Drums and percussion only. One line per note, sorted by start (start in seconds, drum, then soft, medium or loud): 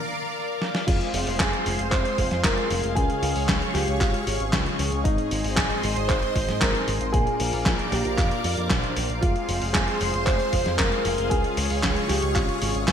0.62 snare medium
0.75 snare medium
0.88 kick loud
0.88 closed hi-hat medium
0.88 crash loud
1.01 closed hi-hat soft
1.14 open hi-hat loud
1.27 open hi-hat medium
1.40 kick loud
1.40 snare loud
1.40 clap loud
1.40 closed hi-hat loud
1.53 closed hi-hat soft
1.66 open hi-hat loud
1.79 closed hi-hat soft
1.92 kick loud
1.92 clap medium
1.92 closed hi-hat medium
2.05 closed hi-hat soft
2.18 kick medium
2.18 open hi-hat loud
2.31 snare soft
2.31 closed hi-hat soft
2.44 kick loud
2.44 snare loud
2.44 clap medium
2.44 closed hi-hat loud
2.57 closed hi-hat soft
2.70 open hi-hat loud
2.84 closed hi-hat soft
2.97 kick loud
2.97 closed hi-hat medium
3.10 closed hi-hat soft
3.23 open hi-hat loud
3.36 open hi-hat medium
3.49 kick loud
3.49 snare loud
3.49 clap loud
3.49 closed hi-hat loud
3.62 closed hi-hat soft
3.75 snare soft
3.75 open hi-hat loud
3.88 closed hi-hat soft
4.01 kick loud
4.01 clap medium
4.01 closed hi-hat medium
4.14 closed hi-hat soft
4.27 open hi-hat loud
4.40 closed hi-hat soft
4.53 kick loud
4.53 snare loud
4.53 clap medium
4.53 closed hi-hat medium
4.66 closed hi-hat soft
4.79 open hi-hat loud
4.92 closed hi-hat soft
5.05 kick loud
5.05 closed hi-hat medium
5.18 closed hi-hat soft
5.31 open hi-hat loud
5.44 open hi-hat medium
5.57 kick loud
5.57 snare loud
5.57 clap medium
5.57 closed hi-hat medium
5.70 closed hi-hat soft
5.83 open hi-hat loud
5.96 closed hi-hat soft
6.09 kick loud
6.09 clap medium
6.09 closed hi-hat medium
6.23 closed hi-hat soft
6.36 kick medium
6.36 open hi-hat loud
6.49 snare soft
6.49 closed hi-hat soft
6.62 kick loud
6.62 snare loud
6.62 clap medium
6.62 closed hi-hat medium
6.75 closed hi-hat soft
6.88 open hi-hat loud
7.01 closed hi-hat soft
7.14 kick loud
7.14 closed hi-hat medium
7.27 closed hi-hat soft
7.40 open hi-hat loud
7.53 open hi-hat medium
7.66 kick loud
7.66 snare loud
7.66 clap medium
7.66 closed hi-hat medium
7.79 closed hi-hat soft
7.92 snare soft
7.92 open hi-hat loud
8.05 closed hi-hat soft
8.18 kick loud
8.18 clap soft
8.18 closed hi-hat medium
8.31 closed hi-hat soft
8.44 open hi-hat loud
8.57 closed hi-hat soft
8.70 kick loud
8.70 snare loud
8.70 clap medium
8.70 closed hi-hat medium
8.83 closed hi-hat soft
8.96 open hi-hat loud
9.10 closed hi-hat soft
9.23 kick loud
9.23 closed hi-hat medium
9.36 closed hi-hat soft
9.49 open hi-hat loud
9.62 open hi-hat medium
9.75 kick loud
9.75 snare loud
9.75 clap medium
9.75 closed hi-hat medium
9.88 closed hi-hat soft
10.01 open hi-hat loud
10.14 closed hi-hat soft
10.27 kick loud
10.27 clap soft
10.27 closed hi-hat medium
10.40 closed hi-hat soft
10.53 kick medium
10.53 open hi-hat loud
10.66 snare soft
10.66 closed hi-hat soft
10.79 kick loud
10.79 snare loud
10.79 clap medium
10.79 closed hi-hat medium
10.92 closed hi-hat soft
11.05 open hi-hat loud
11.18 closed hi-hat soft
11.31 kick loud
11.31 closed hi-hat loud
11.44 closed hi-hat soft
11.57 open hi-hat loud
11.70 open hi-hat medium
11.83 kick loud
11.83 snare loud
11.83 clap medium
11.83 closed hi-hat medium
11.96 closed hi-hat soft
12.09 snare soft
12.09 open hi-hat loud
12.22 closed hi-hat soft
12.36 kick loud
12.36 clap soft
12.36 closed hi-hat medium
12.49 closed hi-hat soft
12.62 open hi-hat loud
12.75 closed hi-hat soft
12.88 kick loud
12.88 snare loud
12.88 clap medium
12.88 closed hi-hat medium